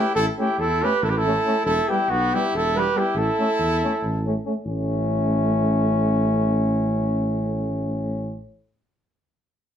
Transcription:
Already playing: trumpet E4, flugelhorn G4
0.15 tuba A1, trumpet E4, flugelhorn A4
0.39 euphonium A3, trombone C#4, trumpet E4, flugelhorn G4
0.58 tuba E2, trumpet E4, flugelhorn A4
0.82 euphonium A3, trombone C#4, trumpet G4, flugelhorn B4
1.02 tuba A1, trumpet E4, flugelhorn A4
1.09 trumpet G4, flugelhorn B4
1.17 trumpet E4, flugelhorn A4
1.25 euphonium A3, trombone C#4
1.46 euphonium A3, trombone C#4
1.65 tuba E1, trumpet E4, flugelhorn A4
1.88 euphonium G3, trombone B3, trumpet E4, flugelhorn G4
2.09 tuba B1, trumpet B3, flugelhorn F#4
2.33 euphonium G3, trombone B3, trumpet E4, flugelhorn G4
2.53 tuba E1, trumpet E4, flugelhorn A4
2.75 euphonium G3, trombone B3, flugelhorn B4
2.79 trumpet G4
2.95 euphonium G3, trombone B3, trumpet E4, flugelhorn G4
3.15 tuba A1, flugelhorn A4
3.19 trumpet E4
3.38 euphonium A3, trombone C#4
3.59 tuba E2
3.84 euphonium A3, trombone C#4
4.03 tuba A1
4.26 euphonium A3, trombone C#4
4.45 euphonium A3, trombone C#4
4.65 tuba A1, euphonium A3, trombone C#4

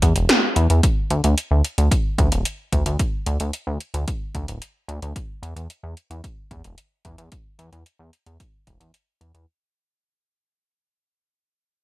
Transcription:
0.02 analog synth bass E2, kick, closed hi-hat
0.16 analog synth bass E1, closed hi-hat
0.29 snare, closed hi-hat
0.56 analog synth bass E2, closed hi-hat
0.70 analog synth bass E2, closed hi-hat
0.83 kick, closed hi-hat
1.10 analog synth bass D2, closed hi-hat
1.24 analog synth bass D2, closed hi-hat
1.38 closed hi-hat
1.51 analog synth bass D2
1.65 closed hi-hat
1.78 analog synth bass D2, closed hi-hat
1.91 kick, closed hi-hat
2.18 analog synth bass D2, kick, closed hi-hat
2.32 analog synth bass D1, closed hi-hat
2.45 closed hi-hat
2.72 analog synth bass D2, kick, closed hi-hat
2.86 analog synth bass D2, closed hi-hat
2.99 kick, closed hi-hat
3.26 analog synth bass D2, closed hi-hat
3.40 analog synth bass D2, closed hi-hat
3.53 closed hi-hat
3.67 analog synth bass D2
3.81 closed hi-hat
3.94 analog synth bass D2, closed hi-hat
4.08 kick, closed hi-hat
4.35 analog synth bass D2, kick, closed hi-hat
4.48 analog synth bass D1, closed hi-hat
4.62 closed hi-hat
4.88 analog synth bass D2, closed hi-hat
5.02 analog synth bass D2, closed hi-hat
5.16 kick, closed hi-hat
5.43 analog synth bass E2, closed hi-hat
5.56 analog synth bass E2, closed hi-hat
5.70 closed hi-hat
5.83 analog synth bass E2
5.97 closed hi-hat
6.10 analog synth bass E2, closed hi-hat
6.24 kick, closed hi-hat
6.51 analog synth bass E2, kick, closed hi-hat
6.64 analog synth bass E1, closed hi-hat
6.78 closed hi-hat
7.05 analog synth bass E2, kick, closed hi-hat
7.18 analog synth bass E2, closed hi-hat
7.32 kick, closed hi-hat
7.59 analog synth bass E2, closed hi-hat
7.72 analog synth bass E2, closed hi-hat
7.86 closed hi-hat
7.99 analog synth bass E2
8.13 closed hi-hat
8.26 analog synth bass E2, closed hi-hat
8.40 kick, closed hi-hat
8.67 analog synth bass E1, kick, closed hi-hat
8.80 analog synth bass E2, closed hi-hat
8.94 closed hi-hat
9.21 analog synth bass E2, closed hi-hat
9.34 analog synth bass E2, closed hi-hat

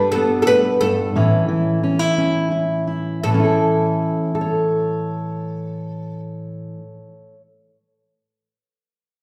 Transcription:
Already playing: steel-string acoustic guitar G2 G3 D4, oud B4
0.12 steel-string acoustic guitar B3, oud A4
0.42 oud A4
0.47 oud B4
0.81 steel-string acoustic guitar G2, oud A4
1.16 steel-string acoustic guitar A2 E3 C#4 E4
1.48 steel-string acoustic guitar E3
1.83 steel-string acoustic guitar C#4
1.99 steel-string acoustic guitar E4
2.18 steel-string acoustic guitar C#4
2.52 steel-string acoustic guitar E4
2.87 steel-string acoustic guitar E4
3.23 steel-string acoustic guitar A2, oud A4
3.29 steel-string acoustic guitar E3
3.34 steel-string acoustic guitar C#4
3.40 steel-string acoustic guitar E4
3.44 steel-string acoustic guitar A4
4.35 steel-string acoustic guitar A4
4.41 steel-string acoustic guitar C#5

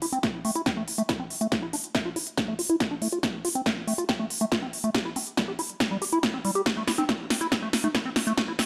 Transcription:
0.02 acid bass E4, open hi-hat
0.12 acid bass C4, closed hi-hat
0.23 acid bass A3, kick, snare, closed hi-hat
0.45 acid bass A3, open hi-hat
0.55 acid bass E4, closed hi-hat
0.66 acid bass C4, kick, snare, closed hi-hat
0.77 acid bass A3
0.88 open hi-hat
0.98 acid bass A3, closed hi-hat
1.09 acid bass E4, kick, snare, closed hi-hat
1.20 acid bass C4
1.30 open hi-hat
1.41 acid bass A3, closed hi-hat
1.52 acid bass F4, kick, snare, closed hi-hat
1.62 acid bass E4
1.73 acid bass D4, open hi-hat
1.84 closed hi-hat
1.95 acid bass A3, kick, snare, closed hi-hat
2.05 acid bass F4
2.16 acid bass E4, open hi-hat
2.27 closed hi-hat
2.37 acid bass D4, kick, snare, closed hi-hat
2.48 acid bass A3
2.59 acid bass F4, open hi-hat
2.69 acid bass E4, closed hi-hat
2.80 kick, snare, closed hi-hat
2.91 acid bass D4
3.02 acid bass A3, open hi-hat
3.12 acid bass F4, closed hi-hat
3.23 acid bass A3, kick, snare, closed hi-hat
3.45 acid bass F4, open hi-hat
3.55 acid bass C4, closed hi-hat
3.66 acid bass A3, kick, snare, closed hi-hat
3.87 acid bass A3, open hi-hat
3.98 acid bass F4, closed hi-hat
4.09 acid bass C4, kick, snare, closed hi-hat
4.19 acid bass A3
4.30 open hi-hat
4.41 acid bass A3, closed hi-hat
4.52 acid bass F4, kick, snare, closed hi-hat
4.62 acid bass C4
4.73 open hi-hat
4.84 acid bass A3, closed hi-hat
4.95 acid bass G4, kick, snare, closed hi-hat
5.05 acid bass E4
5.16 acid bass C4, open hi-hat
5.27 closed hi-hat
5.37 acid bass G3, kick, snare, closed hi-hat
5.48 acid bass G4
5.59 acid bass E4, open hi-hat
5.70 closed hi-hat
5.80 acid bass C4, kick, snare, closed hi-hat
5.91 acid bass G3
6.02 acid bass G4, open hi-hat
6.12 acid bass E4, closed hi-hat
6.23 kick, snare, closed hi-hat
6.34 acid bass C4
6.45 acid bass G3, open hi-hat
6.55 acid bass G4, closed hi-hat
6.66 acid bass A3, kick, snare, closed hi-hat
6.77 acid bass A3
6.87 acid bass E4, snare, open hi-hat
6.98 acid bass C4, closed hi-hat, high conga
7.09 acid bass A3, kick, snare, closed hi-hat
7.30 snare, open hi-hat
7.41 acid bass E4, closed hi-hat
7.52 acid bass C4, kick, snare, closed hi-hat
7.62 acid bass A3
7.73 snare, open hi-hat
7.84 acid bass A3, closed hi-hat, high conga
7.95 acid bass E4, kick, snare, closed hi-hat
8.06 acid bass C4
8.16 snare, open hi-hat
8.27 acid bass A3, closed hi-hat
8.37 acid bass A3, kick, snare, closed hi-hat
8.48 acid bass E4
8.59 acid bass C4, snare, open hi-hat

